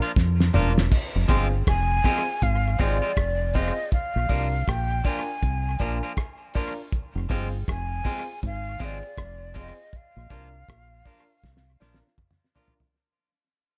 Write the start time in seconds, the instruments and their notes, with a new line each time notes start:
0.02 clean electric guitar F3 A#3 D4 F4, closed hi-hat
0.16 fingered electric bass F2, kick, snare
0.40 snare
0.54 fingered electric bass E1, clean electric guitar F3 A#3 D4 F4, grand piano D4 F4 A#4, mid tom
0.78 snare
0.92 kick, crash
1.15 fingered electric bass F1
1.28 fingered electric bass G1, clean electric guitar F3 G#3 C4 F4, grand piano C4 F4 G#4, kick, closed hi-hat
1.67 fingered electric bass F1, flute G#5, kick, cross-stick
2.04 clean electric guitar F3 G#3 C4 F4, grand piano C4 F4 G#4, kick, cross-stick, open hi-hat
2.42 fingered electric bass G#1, flute F5, kick, hi-hat pedal
2.78 fingered electric bass G#1, clean electric guitar F3 G#3 C4 F4, grand piano C4 F4 G#4, flute D5, kick, open hi-hat
3.02 clean electric guitar F3 G#3 C4 F4, grand piano F4 G#4
3.17 fingered electric bass F1, kick, cross-stick, hi-hat pedal
3.53 clean electric guitar F3 G#3 C4 F4, grand piano C4 F4 G#4, flute D#5, kick, open hi-hat
3.92 flute F5, kick, hi-hat pedal
4.16 fingered electric bass A#1
4.29 fingered electric bass C2, clean electric guitar F3 A#3 D4 F4, grand piano D4 F4 A#4, kick, open hi-hat
4.67 fingered electric bass A#1, flute G5, kick, cross-stick, hi-hat pedal
5.04 clean electric guitar F3 A#3 D4 F4, grand piano D4 F4 A#4, flute G#5, kick, open hi-hat
5.42 fingered electric bass C2, kick, hi-hat pedal
5.79 fingered electric bass A#1, clean electric guitar F3 A#3 D4 F4, grand piano D4 F4 A#4, kick, closed hi-hat
6.03 clean electric guitar F3 A#3 D4 F4, grand piano F4 A#4
6.17 kick, cross-stick
6.54 clean electric guitar F3 A#3 D4 F4, grand piano D4 F4 A#4, kick, open hi-hat
6.92 kick, hi-hat pedal
7.15 fingered electric bass F1
7.29 fingered electric bass G1, clean electric guitar F3 G#3 C4 F4, grand piano C4 F4 G#4, kick, open hi-hat
7.68 fingered electric bass F1, flute G#5, kick, cross-stick, hi-hat pedal
8.04 clean electric guitar F3 G#3 C4 F4, grand piano C4 F4 G#4, kick, open hi-hat
8.43 fingered electric bass G#1, flute F5, kick, hi-hat pedal
8.79 fingered electric bass G#1, clean electric guitar F3 G#3 C4 F4, grand piano C4 F4 G#4, kick, open hi-hat
8.85 flute D5
9.04 grand piano F4 G#4, muted clean electric guitar stroke
9.18 fingered electric bass F1, kick, cross-stick, hi-hat pedal
9.54 clean electric guitar F3 G#3 C4 F4, grand piano C4 F4 G#4, kick, open hi-hat
9.59 flute D#5
9.93 flute F5, kick, hi-hat pedal
10.16 fingered electric bass A#1
10.30 fingered electric bass C2, clean electric guitar F3 A#3 D4 F4, grand piano D4 F4 A#4, kick, closed hi-hat
10.69 fingered electric bass A#1, kick, cross-stick
11.05 clean electric guitar F3 A#3 D4 F4, grand piano D4 F4 A#4, kick, open hi-hat
11.44 fingered electric bass C2, kick, snare
11.57 snare
11.80 fingered electric bass A#1, clean electric guitar F3 A#3 D4 F4, grand piano D4 F4 A#4, snare
11.94 snare
12.04 grand piano F4 A#4
12.18 kick, mid tom
12.31 mid tom
12.55 clean electric guitar F3 A#3 D4 F4, grand piano D4 F4 A#4, floor tom
12.68 floor tom
12.80 floor tom